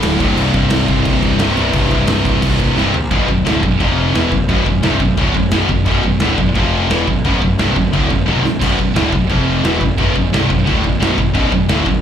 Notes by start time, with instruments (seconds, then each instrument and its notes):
Already playing: distorted electric guitar D2 A2 D3
0.02 picked electric bass D1, snare, crash
0.19 picked electric bass C1, distorted electric guitar C2 G2 C3, kick, crash
0.37 picked electric bass C1, crash
0.54 picked electric bass C1, kick, crash
0.70 picked electric bass C1, snare, crash
0.88 picked electric bass C1, kick, crash
1.05 picked electric bass C1, kick, crash
1.23 picked electric bass C1, kick, crash
1.39 picked electric bass C1, distorted electric guitar C2 G2 C3, snare, crash
1.55 picked electric bass C1, distorted electric guitar C2 G2 C3, crash
1.73 picked electric bass C1, kick, crash
1.91 picked electric bass C1, kick, crash
2.07 picked electric bass C1, snare, crash
2.25 picked electric bass C1, kick, crash
2.42 picked electric bass C1, kick, crash
2.59 kick, crash
2.75 picked electric bass C1, distorted electric guitar C2 G2 C3, snare
2.94 picked electric bass A#1, floor tom
3.11 picked electric bass B0, distorted electric guitar B1 F#2 B2, kick, china
3.28 picked electric bass B0, distorted electric guitar B1 F#2, kick
3.45 picked electric bass D1, distorted electric guitar D2 A2 D3, snare, china
3.62 picked electric bass B0, distorted electric guitar B1 F#2, kick
3.80 picked electric bass F1, distorted electric guitar F2 C3 F3, kick, china
4.13 picked electric bass E1, distorted electric guitar E2 B2 E3, snare, china
4.30 picked electric bass B0, distorted electric guitar B1 F#2, kick
4.49 picked electric bass B0, distorted electric guitar B1 F#2 B2, kick, china
4.65 picked electric bass B0, distorted electric guitar B1 F#2, kick
4.83 picked electric bass C1, distorted electric guitar C2 G2 C3, snare, china
5.00 picked electric bass B0, distorted electric guitar B1 F#2, kick
5.17 picked electric bass D1, distorted electric guitar D2 A2 D3, kick, china
5.35 picked electric bass B0, distorted electric guitar B1 F#2, kick
5.51 picked electric bass B0, distorted electric guitar B1 F#2 B2, snare, china
5.69 picked electric bass B0, distorted electric guitar B1 F#2, kick
5.86 picked electric bass B0, distorted electric guitar B1 F#2 B2, kick, china
6.03 picked electric bass B0, distorted electric guitar B1 F#2, kick
6.19 picked electric bass D1, distorted electric guitar D2 A2 D3, snare, china
6.37 picked electric bass B0, distorted electric guitar B1 F#2, kick
6.55 picked electric bass F1, distorted electric guitar F2 C3 F3, kick, china
6.90 picked electric bass E1, distorted electric guitar E2 B2 E3, snare, china
7.08 picked electric bass B0, distorted electric guitar B1 F#2, kick
7.25 picked electric bass B0, distorted electric guitar B1 F#2 B2, kick, china
7.42 picked electric bass B0, distorted electric guitar B1 F#2, kick
7.58 picked electric bass C1, distorted electric guitar C2 G2 C3, snare, china
7.76 picked electric bass B0, distorted electric guitar B1 F#2, kick
7.93 picked electric bass D1, distorted electric guitar D2 A2 D3, kick, china
8.09 picked electric bass B0, distorted electric guitar B1 F#2, kick
8.26 picked electric bass B0, distorted electric guitar B1 F#2 B2, high tom
8.44 picked electric bass B0, distorted electric guitar B1 F#2, snare
8.62 picked electric bass B0, distorted electric guitar B1 F#2 B2, kick, crash, china
8.79 picked electric bass B0, distorted electric guitar B1 F#2, kick
8.96 picked electric bass D1, distorted electric guitar D2 A2 D3, snare, china
9.12 picked electric bass B0, distorted electric guitar B1 F#2, kick
9.29 picked electric bass F1, distorted electric guitar F2 C3 F3, kick, china
9.64 picked electric bass E1, distorted electric guitar E2 B2 E3, snare, china
9.81 picked electric bass B0, distorted electric guitar B1 F#2, kick
9.98 picked electric bass B0, distorted electric guitar B1 F#2 B2, kick, china
10.16 picked electric bass B0, distorted electric guitar B1 F#2, kick
10.32 picked electric bass C1, distorted electric guitar C2 G2 C3, snare, china
10.50 picked electric bass B0, distorted electric guitar B1 F#2, kick
10.66 picked electric bass D1, distorted electric guitar D2 A2 D3, kick, china
10.83 picked electric bass B0, distorted electric guitar B1 F#2, kick
11.00 picked electric bass B0, distorted electric guitar B1 F#2 B2, snare, china
11.17 picked electric bass B0, distorted electric guitar B1 F#2, kick
11.33 picked electric bass B0, distorted electric guitar B1 F#2 B2, kick, china
11.52 picked electric bass B0, distorted electric guitar B1 F#2, kick
11.69 picked electric bass D1, distorted electric guitar D2 A2 D3, snare, china
11.85 picked electric bass B0, distorted electric guitar B1 F#2, kick